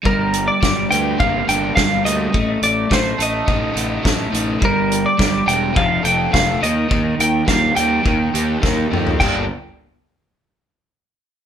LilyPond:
<<
  \new Staff \with { instrumentName = "Clean electric guitar" } { \time 4/4 \key g \minor \tempo 4 = 105 bes'8. d''8. g''8 f''8 g''8 f''8 ees''8~ | ees''8 d''8 c''8 ees''2 r8 | bes'8. d''8. g''8 f''8 g''8 f''8 ees''8~ | ees''8 g''8 f''8 g''2 r8 |
g''8 r2. r8 | }
  \new Staff \with { instrumentName = "Overdriven electric guitar" } { \time 4/4 \key g \minor g4 g8 d'8 bes8 d'8 g8 bes8 | a4 a8 a'8 ees'8 a'8 a8 ees'8 | g4 g8 d'8 f8 a'8 a8 ees8 | ees4 g8 g'8 ees8 g'8 bes8 ees'8 |
<g, d g bes d'>8 r2. r8 | }
  \new Staff \with { instrumentName = "Fingered electric bass" } { \clef bass \time 4/4 \key g \minor g,,4 g,,8 d,8 g,,8 g,,8 g,,8 d,8 | a,,8 a,,8 a,,8 a,,8 a,,8 a,,8 a,,8 a,,8 | g,,4 g,,8 e,,8 f,,8 f,,8 f,,8 ees,8 | ees,8 ees,8 ees,8 ees,8 ees,8 ees,8 ees,8 f,8 |
g,,8 r2. r8 | }
  \new DrumStaff \with { instrumentName = "Drums" } \drummode { \time 4/4 bd8 hh8 <bd sn>8 hh8 bd8 hh8 <bd sn>8 hh8 | bd8 hh8 <bd sn>8 hh8 bd8 hh8 <bd sn>8 hh8 | bd8 hh8 <bd sn>8 hh8 bd8 hh8 <bd sn>8 hh8 | bd8 hh8 <bd sn>8 hh8 bd8 hh8 <bd sn>8 toml16 tomfh16 |
<cymc bd>4 r4 r4 r4 | }
>>